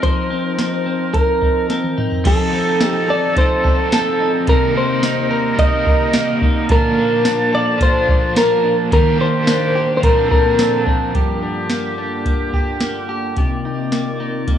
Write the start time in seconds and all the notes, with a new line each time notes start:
Already playing: F3 C4 D#4 A#4
0.02 F3 C5, kick, closed hi-hat
0.30 C4
0.58 D#4, snare, closed hi-hat
0.86 C4
1.13 A#4, kick, closed hi-hat
1.42 D#4, kick
1.70 C4, snare, closed hi-hat
1.84 high tom
1.97 D#4, mid tom
2.12 floor tom
2.24 F3 C4 D#4 A4, kick, closed hi-hat, crash
2.51 C4 D#4 A4
2.57 C4
2.81 D#4, snare, closed hi-hat, tambourine
2.88 G4
3.09 A4 D5
3.33 F3 D#4, kick, closed hi-hat
3.38 C4 D#4 C5
3.45 A4
3.64 A4, kick
3.92 C4 A4, snare, closed hi-hat, tambourine
4.20 D#4
4.47 C3 G3 A#3 D#4 A#4, kick, closed hi-hat
4.74 A#3 D#4 A#4 C5
4.80 A#3
5.03 D#4, snare, closed hi-hat, tambourine
5.31 A#4
5.55 G3 D#4, kick, closed hi-hat
5.59 A#3 D#5
5.63 D#4 A#4
5.86 A#4, kick
6.13 A#3, snare, closed hi-hat, tambourine
6.42 D#4, kick
6.69 A#2 D3 F3 A#3 D4 A#4 A5, kick, closed hi-hat
6.73 A4
6.98 F3 A#3 D4
7.25 D4, snare, closed hi-hat, tambourine
7.53 A4 D5
7.77 F3 D4, kick, closed hi-hat
7.82 A#3 D4 C5
8.08 kick
8.36 A#3 A#4, snare, closed hi-hat, tambourine
8.64 D4
8.91 D#3 G3 A#3 D4 G4 A#4, kick, closed hi-hat
9.19 A#3 D4 G4 C5
9.24 A#3
9.47 D4, snare, closed hi-hat, tambourine
9.75 G4
9.97 F3 C5
10.02 A#2 D3 C4 A#4 A5, kick, closed hi-hat
10.08 D4
10.31 A4 A#4, kick
10.59 C4, snare, closed hi-hat, tambourine
10.87 D4, kick
11.14 G2 D3 A#3 F4 G4, kick, closed hi-hat
11.43 D4
11.70 A#3, snare, closed hi-hat
11.98 D4
12.25 A#3, kick, closed hi-hat
12.53 G4, kick
12.81 A#3, snare, closed hi-hat
13.09 G4
13.36 C3 D#3 C4 G4 D5, kick, closed hi-hat
13.65 D#4
13.92 A#3, snare, closed hi-hat
14.20 D#4
14.47 A#3, kick, closed hi-hat